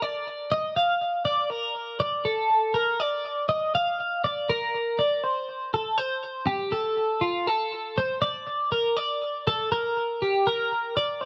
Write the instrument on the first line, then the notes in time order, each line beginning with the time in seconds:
clean electric guitar
0.02 D5
0.52 D#5
0.76 F5
1.25 D5
1.50 A#4
2.00 D5
2.25 A4
2.74 A#4
3.00 D5
3.49 D#5
3.75 F5
4.24 D5
4.50 A#4
4.99 D5
5.24 C5
5.74 A4
5.98 C5
6.47 G4
6.72 A4
7.21 F4
7.47 A4
7.98 C5
8.22 D5
8.72 A#4
8.97 D5
9.47 A4
9.72 A#4
10.22 G4
10.47 A#4
10.97 D5
11.21 C5